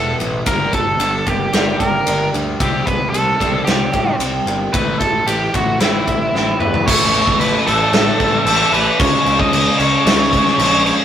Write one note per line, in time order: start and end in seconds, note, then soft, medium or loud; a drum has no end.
0.00 0.13 E1 medium
0.00 0.17 E2 medium
0.00 0.17 B2 medium
0.00 0.17 E3 medium
0.00 0.98 G3 medium
0.00 0.46 B3 medium
0.00 0.46 E4 medium
0.00 0.16 A4 medium
0.19 0.41 A1 medium
0.19 0.44 E2 medium
0.19 0.44 B2 medium
0.19 0.46 E3 medium
0.19 ride medium
0.46 0.67 G1 medium
0.46 1.80 G2 medium
0.46 0.71 G2 medium
0.46 0.71 D3 medium
0.46 0.72 G3 loud
0.46 0.74 A#4 medium
0.46 kick loud
0.46 ride medium
0.73 0.94 G1 medium
0.73 0.97 G2 medium
0.73 0.98 D3 medium
0.73 1.29 A4 medium
0.73 kick medium
0.73 ride medium
0.98 1.19 G1 medium
0.98 1.24 G2 medium
0.98 1.24 D3 medium
0.98 2.31 G3 medium
0.98 ride medium
1.26 1.47 G1 medium
1.26 1.51 G2 medium
1.26 1.51 D3 medium
1.26 2.59 A#3 medium
1.26 1.53 G4 medium
1.26 kick medium
1.26 ride medium
1.52 1.74 G1 medium
1.52 1.79 G2 medium
1.52 1.79 D3 medium
1.52 1.79 G3 medium
1.52 2.05 D4 medium
1.52 1.81 G4 medium
1.52 snare loud
1.52 ride medium
1.79 2.00 G1 medium
1.79 2.04 G2 medium
1.79 2.04 D3 medium
1.79 2.59 G4 medium
1.79 2.29 A#4 medium
1.79 kick medium
1.79 ride medium
2.06 2.28 G1 medium
2.06 2.31 G2 medium
2.06 2.31 D3 medium
2.06 2.60 D4 medium
2.06 ride medium
2.32 2.54 D2 medium
2.32 2.58 G2 medium
2.32 2.58 D3 medium
2.32 2.59 G3 medium
2.32 ride soft
2.59 2.80 C2 medium
2.59 3.93 C3 medium
2.59 2.85 C3 medium
2.59 2.85 G3 loud
2.59 2.86 C4 loud
2.59 2.88 G4 medium
2.59 kick loud
2.59 ride medium
2.86 3.07 C2 medium
2.86 3.11 C3 medium
2.86 3.11 G3 medium
2.86 3.09 B4 loud
2.86 kick medium
2.86 ride medium
3.10 3.33 C2 medium
3.10 4.44 D#3 medium
3.10 3.61 A4 medium
3.14 3.38 C3 medium
3.14 3.38 G3 medium
3.14 ride medium
3.39 3.61 C2 medium
3.39 3.65 C3 medium
3.39 4.73 G3 medium
3.39 3.65 G3 medium
3.39 3.66 C4 loud
3.39 kick medium
3.39 ride medium
3.65 3.87 C2 medium
3.65 3.91 C3 medium
3.65 3.92 G3 medium
3.65 4.18 C4 medium
3.65 4.15 G4 medium
3.65 snare loud
3.65 ride medium
3.93 4.14 A2 medium
3.93 4.18 C3 medium
3.93 4.18 G3 medium
3.93 4.73 G4 medium
3.93 kick medium
3.93 ride medium
4.19 4.40 C2 medium
4.19 4.44 C3 medium
4.19 4.45 G3 medium
4.19 4.73 C4 medium
4.19 ride medium
4.45 4.67 G1 medium
4.45 4.71 C3 medium
4.45 4.73 D#3 medium
4.45 4.71 G3 medium
4.45 ride medium
4.73 4.94 A1 medium
4.73 4.98 A2 medium
4.73 6.07 A2 medium
4.73 4.99 E3 medium
4.73 4.99 A3 medium
4.73 4.98 B4 medium
4.73 kick loud
4.73 ride medium
4.99 5.21 A1 medium
4.99 5.25 A2 medium
4.99 5.25 E3 medium
4.99 5.27 A4 medium
4.99 kick medium
4.99 ride medium
5.26 5.47 A1 medium
5.26 5.51 A2 medium
5.26 6.59 E3 medium
5.26 5.51 E3 medium
5.26 5.54 G4 medium
5.26 ride medium
5.53 5.74 A1 medium
5.53 5.78 A2 medium
5.53 5.78 E3 medium
5.53 6.87 A3 medium
5.53 5.80 F#4 medium
5.53 kick medium
5.53 ride medium
5.80 6.01 A1 medium
5.80 6.06 A2 medium
5.80 6.06 E3 medium
5.80 6.06 A3 medium
5.80 6.33 C4 medium
5.80 6.57 E4 medium
5.80 snare loud
5.80 ride medium
6.07 6.28 A1 medium
6.07 6.31 A2 medium
6.07 6.32 E3 medium
6.07 6.87 E4 medium
6.07 kick medium
6.07 ride medium
6.34 6.54 A1 medium
6.34 6.58 A2 medium
6.34 6.59 E3 medium
6.34 6.87 C4 medium
6.34 snare medium
6.59 6.80 E2 medium
6.59 6.85 A2 medium
6.59 6.87 E3 medium
6.59 6.85 E3 medium
6.59 6.88 B4 medium
6.59 mid tom medium
6.74 floor tom medium
6.86 7.19 A1 medium
6.86 7.65 A2 medium
6.86 8.19 A2 medium
6.86 7.68 E3 medium
6.86 8.19 E3 medium
6.86 7.36 C#5 loud
6.86 kick loud
6.86 crash loud
6.86 crash medium
6.90 7.65 A3 loud
6.90 8.18 A3 loud
7.14 crash medium
7.27 kick medium
7.39 7.55 A1 medium
7.39 7.65 B4 medium
7.39 crash medium
7.66 7.83 A1 medium
7.66 8.99 A2 medium
7.66 8.99 E3 medium
7.66 8.98 A3 medium
7.66 8.73 A4 medium
7.66 crash medium
7.93 8.09 A1 medium
7.93 snare loud
7.93 crash medium
8.19 8.36 A1 medium
8.19 8.46 A2 medium
8.19 8.45 E3 medium
8.19 8.45 A3 medium
8.19 kick medium
8.19 crash medium
8.45 8.62 A1 loud
8.45 8.99 A2 medium
8.45 8.99 E3 medium
8.45 crash medium
8.50 9.00 A3 medium
8.72 8.89 A1 medium
8.72 9.01 B4 medium
8.72 crash medium
8.99 9.16 C#2 medium
8.99 9.78 C#3 loud
8.99 10.31 C#3 medium
8.99 9.78 G#3 loud
8.99 10.32 G#3 loud
8.99 9.78 C#4 loud
8.99 10.32 C#4 loud
8.99 9.39 C#5 loud
8.99 kick loud
8.99 crash medium
9.26 9.42 C#2 medium
9.26 crash medium
9.40 9.77 D#5 loud
9.40 kick medium
9.52 9.69 C#2 medium
9.52 crash medium
9.79 9.96 C#2 loud
9.79 11.05 C#3 medium
9.79 11.05 G#3 medium
9.79 11.05 C#4 medium
9.79 10.82 C#5 loud
9.79 crash medium
10.05 10.38 C#2 medium
10.05 snare loud
10.05 crash medium
10.33 10.57 C#3 medium
10.33 10.59 G#3 medium
10.33 10.58 C#4 medium
10.33 kick medium
10.33 crash medium
10.47 snare soft
10.58 10.91 A#1 medium
10.58 11.05 C#3 medium
10.58 11.05 G#3 medium
10.58 11.05 C#4 medium
10.58 crash medium
10.86 10.94 C#5 medium
10.86 crash medium